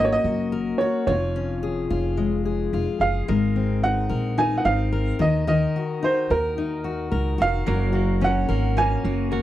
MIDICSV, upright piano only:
0, 0, Header, 1, 2, 480
1, 0, Start_track
1, 0, Tempo, 550459
1, 937, Time_signature, 4, 2, 24, 8
1, 8215, End_track
2, 0, Start_track
2, 0, Title_t, "Upright piano"
2, 0, Program_c, 0, 0
2, 40, Note_on_c, 0, 73, 76
2, 108, Note_off_c, 0, 73, 0
2, 109, Note_on_c, 0, 75, 90
2, 681, Note_on_c, 0, 73, 80
2, 715, Note_off_c, 0, 75, 0
2, 920, Note_off_c, 0, 73, 0
2, 933, Note_on_c, 0, 73, 73
2, 2342, Note_off_c, 0, 73, 0
2, 2625, Note_on_c, 0, 77, 87
2, 3344, Note_on_c, 0, 78, 88
2, 3363, Note_off_c, 0, 77, 0
2, 3788, Note_off_c, 0, 78, 0
2, 3822, Note_on_c, 0, 80, 93
2, 3990, Note_on_c, 0, 78, 68
2, 4011, Note_off_c, 0, 80, 0
2, 4052, Note_off_c, 0, 78, 0
2, 4056, Note_on_c, 0, 77, 93
2, 4547, Note_on_c, 0, 75, 87
2, 4551, Note_off_c, 0, 77, 0
2, 4767, Note_off_c, 0, 75, 0
2, 4780, Note_on_c, 0, 75, 83
2, 5269, Note_on_c, 0, 72, 84
2, 5273, Note_off_c, 0, 75, 0
2, 5502, Note_on_c, 0, 70, 84
2, 5510, Note_off_c, 0, 72, 0
2, 6468, Note_on_c, 0, 77, 106
2, 6487, Note_off_c, 0, 70, 0
2, 7188, Note_on_c, 0, 78, 88
2, 7203, Note_off_c, 0, 77, 0
2, 7656, Note_on_c, 0, 80, 97
2, 7676, Note_off_c, 0, 78, 0
2, 8215, Note_off_c, 0, 80, 0
2, 8215, End_track
0, 0, End_of_file